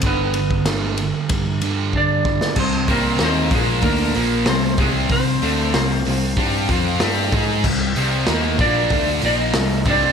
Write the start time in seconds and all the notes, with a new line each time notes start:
0.02 G1 G2 D3 G3, kick, ride
0.06 B3 B4
0.34 G2 D3, ride
0.51 kick
0.66 G2 D3 G3, snare, ride
0.97 G2 D3, ride
1.29 G2 D3, kick, ride
1.61 G2 D3 G3, ride
1.93 G2 D3 D4, kick
1.97 D5
2.25 G2 D3, kick
2.41 snare
2.56 C2 C3 G3 C4, kick, crash
2.60 C5
2.88 C2 C3 G3 A#3 C4 A#4, kick, open hi-hat
3.19 D#2 D#3 A#3 D#4, snare, open hi-hat
3.23 C4 C5
3.51 A#1 A#2 F3 G#3 A#3, kick, open hi-hat
3.55 G#4
3.82 D2 D3 A3 A#3 D4 A#4, kick, open hi-hat
4.14 A#1 A#2 F3 A#3, open hi-hat
4.46 C2 C3 G3 C4 C5, snare, open hi-hat
4.77 C2 C3 G3 G#3 C4 G#4, kick, open hi-hat
5.09 C2 C3 G3 C4 C5, kick, open hi-hat
5.41 D2 D3 A3 D4, open hi-hat
5.74 C2 C3 G3 C4 C5, snare, open hi-hat
6.05 C2 C3 G3, open hi-hat
6.36 G2 G3 D4 G4, kick, open hi-hat
6.69 F2 F3 C4 F4, kick, open hi-hat
7.00 G2 G3 D4 G4, snare, open hi-hat
7.32 G#2 G#3 D#4 G#4, kick, open hi-hat
7.64 C2 C3 G3, kick, crash
7.96 C2 C3 G3 C4, open hi-hat
8.27 D#2 D#3 A#3 D#4, snare, open hi-hat
8.58 A#1 A#2 F3 A#3 D4 D5, kick, open hi-hat
8.90 D2 D3 A3 D4, kick, open hi-hat
9.21 A#1 A#2 F3 A#3 D#4, open hi-hat
9.26 D5
9.37 D#5
9.54 C2 C3 G3, snare, open hi-hat
9.85 C2 C3 G3 C4 D4, kick, open hi-hat
9.90 D5